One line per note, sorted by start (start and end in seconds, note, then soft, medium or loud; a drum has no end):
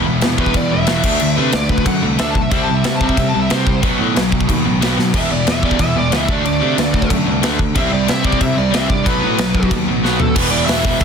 0.00 1.04 E3 medium
0.00 1.04 G3 medium
0.00 1.04 B3 loud
0.00 1.04 E4 medium
0.06 0.22 E1 medium
0.06 0.21 E2 medium
0.06 0.21 B2 medium
0.21 0.36 E2 medium
0.21 0.53 E2 medium
0.21 0.37 B2 medium
0.21 snare loud
0.21 crash medium
0.38 0.53 E2 medium
0.38 0.54 B2 loud
0.38 0.54 E3 loud
0.38 0.56 B4 medium
0.38 kick medium
0.46 kick medium
0.54 0.70 E2 medium
0.54 0.71 E2 medium
0.54 0.70 B2 medium
0.54 0.72 D5 medium
0.54 kick loud
0.54 crash medium
0.71 0.88 E1 medium
0.71 0.85 E2 medium
0.71 0.86 B2 medium
0.71 1.37 E5 medium
0.87 1.03 E1 medium
0.87 1.03 E2 medium
0.87 1.03 B2 loud
0.87 1.03 E3 loud
0.87 snare loud
0.87 crash medium
1.03 1.20 D2 medium
1.03 1.19 D3 medium
1.03 2.35 F#3 loud
1.03 1.20 A3 loud
1.03 1.20 D4 loud
1.03 kick loud
1.03 crash loud
1.20 1.37 D2 medium
1.20 1.35 D3 medium
1.20 1.36 A3 medium
1.20 crash medium
1.37 1.53 C3 medium
1.37 1.51 D3 medium
1.37 1.52 A3 loud
1.37 1.53 D4 loud
1.37 1.55 B4 medium
1.52 1.85 D2 medium
1.52 1.67 D3 medium
1.52 1.68 A3 loud
1.52 1.69 D5 medium
1.52 snare loud
1.52 crash medium
1.68 1.84 D3 medium
1.68 1.84 A3 medium
1.68 1.86 B4 medium
1.68 kick medium
1.78 kick medium
1.85 2.02 F#2 medium
1.85 2.01 D3 medium
1.85 2.01 A3 medium
1.85 2.03 F#5 loud
1.85 kick loud
1.85 crash medium
2.02 2.19 C2 medium
2.02 2.17 D3 medium
2.02 2.18 A3 medium
2.18 2.34 D2 medium
2.18 2.34 D3 loud
2.18 2.34 A3 loud
2.18 2.35 D4 loud
2.18 2.30 E5 loud
2.18 snare loud
2.18 crash medium
2.30 2.41 A5 loud
2.35 2.51 B1 medium
2.35 2.50 D3 medium
2.35 2.50 A3 medium
2.35 kick medium
2.41 2.50 E5 medium
2.51 2.67 C2 medium
2.51 2.67 C3 medium
2.51 2.67 G3 loud
2.51 2.68 C4 loud
2.51 3.83 E4 loud
2.51 2.62 E5 loud
2.51 kick loud
2.51 crash medium
2.62 2.73 A5 medium
2.68 2.85 C2 medium
2.68 2.83 C3 medium
2.68 2.83 G3 medium
2.74 2.83 E5 medium
2.84 3.00 C3 medium
2.84 3.16 C3 medium
2.84 3.00 G3 loud
2.84 2.95 E5 medium
2.84 snare loud
2.84 crash medium
2.96 3.06 A5 medium
3.01 3.16 C3 loud
3.01 3.16 G3 loud
3.01 3.18 C4 loud
3.01 kick medium
3.07 3.15 E5 medium
3.07 kick medium
3.16 3.32 C3 medium
3.16 3.33 C3 medium
3.16 3.33 G3 medium
3.16 3.28 E5 medium
3.16 kick loud
3.16 crash medium
3.28 3.39 A5 medium
3.34 3.50 C2 medium
3.34 3.49 C3 medium
3.34 3.49 G3 medium
3.40 3.50 E5 medium
3.50 3.66 C2 medium
3.50 3.65 C3 medium
3.50 3.66 G3 medium
3.50 3.67 C4 loud
3.50 3.83 C5 loud
3.50 snare loud
3.50 crash medium
3.66 3.82 C2 medium
3.66 3.82 C3 medium
3.66 3.82 G3 medium
3.66 kick medium
3.82 3.99 B1 medium
3.82 3.98 B2 medium
3.82 5.13 D#3 medium
3.82 3.99 F#3 loud
3.82 3.99 B3 loud
3.82 5.14 D#4 loud
3.82 kick loud
3.82 crash medium
3.99 4.15 A2 medium
3.99 4.14 B2 medium
3.99 4.15 F#3 loud
3.99 4.15 B3 loud
4.16 4.47 B1 medium
4.16 4.31 B2 medium
4.16 4.31 F#3 medium
4.16 snare loud
4.16 crash medium
4.32 4.47 B2 medium
4.32 4.48 F#3 medium
4.32 kick medium
4.41 kick medium
4.48 4.64 D#2 medium
4.48 4.64 B2 medium
4.48 4.64 F#3 medium
4.48 kick medium
4.48 crash medium
4.65 4.81 A1 medium
4.65 4.80 B2 medium
4.65 4.80 F#3 medium
4.81 4.97 B1 medium
4.81 4.97 B2 medium
4.81 4.97 F#3 medium
4.81 4.98 B3 medium
4.81 snare loud
4.81 crash medium
4.98 5.13 B2 medium
4.98 5.13 F#3 medium
4.98 snare medium
5.14 5.29 E1 medium
5.14 5.29 E2 medium
5.14 5.30 B2 loud
5.14 5.30 E3 medium
5.14 6.28 G3 medium
5.14 6.28 B3 loud
5.14 6.29 E4 loud
5.14 5.30 E5 loud
5.14 kick loud
5.14 splash medium
5.14 crash medium
5.31 5.46 E1 medium
5.31 5.45 E2 medium
5.31 5.46 B2 medium
5.31 5.47 D5 loud
5.47 5.61 E2 medium
5.47 5.78 E2 medium
5.47 5.61 B2 medium
5.47 5.64 E5 medium
5.47 snare loud
5.47 crash medium
5.63 5.78 E2 medium
5.63 5.78 B2 loud
5.63 5.79 E3 loud
5.63 5.80 D5 medium
5.63 kick medium
5.71 kick medium
5.79 5.94 E2 medium
5.79 5.95 E2 medium
5.79 5.95 B2 medium
5.79 5.96 E5 loud
5.79 kick loud
5.79 crash medium
5.96 6.11 E1 medium
5.96 6.10 E2 medium
5.96 6.10 B2 medium
5.96 6.13 D5 loud
6.11 6.28 C#2 medium
6.11 6.27 E2 loud
6.11 6.27 B2 medium
6.11 6.28 E3 loud
6.11 6.29 E5 medium
6.11 snare loud
6.11 crash medium
6.28 6.44 D2 medium
6.28 6.43 D3 medium
6.28 7.59 F#3 medium
6.28 6.44 A3 loud
6.28 6.44 D4 loud
6.28 6.45 D5 medium
6.28 kick loud
6.45 6.61 D2 loud
6.45 6.59 D3 medium
6.45 6.60 A3 medium
6.45 7.09 D5 loud
6.45 crash medium
6.61 6.77 C3 medium
6.61 6.75 D3 medium
6.61 6.75 A3 medium
6.61 6.77 D4 loud
6.76 7.09 D2 medium
6.76 6.92 D3 medium
6.76 6.92 A3 medium
6.76 snare loud
6.76 crash medium
6.93 7.08 D3 medium
6.93 7.08 A3 medium
6.93 kick medium
7.02 kick medium
7.09 7.26 F#2 medium
7.09 7.24 D3 medium
7.09 7.25 A3 medium
7.09 kick loud
7.09 crash medium
7.26 7.42 C2 medium
7.26 7.41 D3 medium
7.26 7.41 A3 medium
7.42 7.58 D2 medium
7.42 7.58 D3 medium
7.42 7.58 A3 medium
7.42 7.58 D4 medium
7.42 snare loud
7.42 crash medium
7.59 7.77 D3 medium
7.59 7.74 D3 medium
7.59 7.74 A3 medium
7.59 kick medium
7.75 7.91 C2 loud
7.75 7.90 C3 medium
7.75 7.91 G3 loud
7.75 7.91 C4 loud
7.75 9.06 E4 loud
7.75 7.92 E5 loud
7.75 kick loud
7.75 crash medium
7.91 8.08 C2 medium
7.91 8.06 C3 medium
7.91 8.06 G3 medium
7.91 8.10 D5 medium
8.07 8.22 C3 medium
8.07 8.40 C3 medium
8.07 8.22 G3 medium
8.07 8.25 E5 loud
8.07 snare loud
8.07 crash medium
8.23 8.38 C3 medium
8.23 8.38 G3 loud
8.23 8.40 C4 loud
8.23 8.40 D5 medium
8.23 kick medium
8.32 kick medium
8.39 8.55 C3 medium
8.39 8.56 C3 medium
8.39 8.55 G3 loud
8.39 8.58 E5 loud
8.39 kick loud
8.39 crash medium
8.56 8.73 C2 medium
8.56 8.70 C3 medium
8.56 8.70 G3 medium
8.56 8.73 D5 loud
8.71 8.89 C2 medium
8.71 8.87 C3 loud
8.71 8.87 G3 loud
8.71 8.88 C4 loud
8.71 8.89 E5 loud
8.71 snare loud
8.71 crash medium
8.88 9.05 G2 medium
8.88 9.04 C3 medium
8.88 9.04 G3 medium
8.88 9.06 D5 loud
8.88 kick medium
9.04 9.22 B1 medium
9.04 9.20 B2 medium
9.04 9.20 F#3 loud
9.04 9.21 B3 loud
9.04 10.36 D#4 loud
9.04 9.69 B4 loud
9.04 kick loud
9.04 crash medium
9.21 9.38 A2 medium
9.21 9.37 B2 medium
9.21 9.37 F#3 loud
9.21 9.38 B3 loud
9.38 9.70 B1 medium
9.38 9.53 B2 medium
9.38 9.53 F#3 medium
9.38 snare loud
9.38 crash medium
9.54 9.69 B2 medium
9.54 9.70 F#3 medium
9.54 kick medium
9.63 kick medium
9.71 9.86 D#2 medium
9.71 9.86 B2 medium
9.71 9.86 F#3 medium
9.71 kick loud
9.71 crash medium
9.87 10.03 A1 medium
9.87 10.03 B2 medium
9.87 10.03 F#3 medium
10.03 10.19 B1 medium
10.03 10.19 B2 medium
10.03 10.19 F#3 loud
10.03 10.20 B3 medium
10.03 snare medium
10.20 10.35 B2 medium
10.20 10.35 F#3 medium
10.20 10.35 A4 medium
10.20 floor tom medium
10.35 10.64 E1 medium
10.35 10.52 E2 loud
10.35 10.51 B2 loud
10.35 10.51 E3 loud
10.35 11.04 G3 medium
10.35 11.04 B3 loud
10.35 11.04 E4 loud
10.35 10.53 B4 loud
10.35 kick loud
10.35 crash loud
10.50 10.66 E2 medium
10.50 10.67 B2 medium
10.50 10.67 E3 medium
10.50 10.65 D5 loud
10.65 10.83 E1 loud
10.65 10.84 E2 loud
10.65 10.83 B2 loud
10.65 10.83 E3 loud
10.65 10.99 E5 loud
10.65 snare loud
10.65 open hi-hat medium
10.84 10.99 E1 medium
10.84 10.99 E2 medium
10.84 11.00 B2 loud
10.84 11.00 E3 loud
10.84 kick medium
11.00 11.04 E2 loud
11.00 11.04 B2 loud
11.00 11.04 E5 loud
11.00 kick loud
11.00 open hi-hat medium